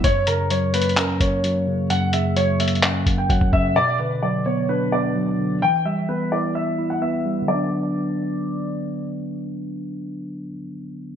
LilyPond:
<<
  \new Staff \with { instrumentName = "Grand piano" } { \time 4/4 \key b \minor \tempo 4 = 129 cis''8 ais'8 cis''8 b'8 ais'8 cis''4. | fis''8 e''8 cis''8 e''8 fis''8. g''16 fis''8 e''8 | d''8 b'8 d''8 cis''8 b'8 d''4. | g''8 e''8 b'8 d''8 e''8. fis''16 e''4 |
d''2. r4 | r1 | }
  \new Staff \with { instrumentName = "Tine electric piano" } { \clef bass \time 4/4 \key b \minor fis,8 cis8 fis8 ais8 cis'8 ais8 fis8 cis8 | fis,8 cis8 fis8 ais8 cis'8 ais8 fis8 cis8 | b,8 d8 fis8 b8 d'8 b8 fis8 d8 | e8 g8 b8 e'8 e''8 e'8 b8 g8 |
<d fis b d'>1~ | <d fis b d'>1 | }
  \new DrumStaff \with { instrumentName = "Drums" } \drummode { \time 4/4 <hh bd>8 hh8 \tuplet 3/2 { hh16 r16 r16 hh16 hh16 hh16 } <hc hh>8 <hh bd>8 hh4 | hh8 hh8 \tuplet 3/2 { hh16 r16 r16 hh16 hh16 hh16 } <hc hh>8 <hh bd>8 <hh bd>16 bd16 bd8 | r4 r4 r4 r4 | r4 r4 r4 r4 |
r4 r4 r4 r4 | r4 r4 r4 r4 | }
>>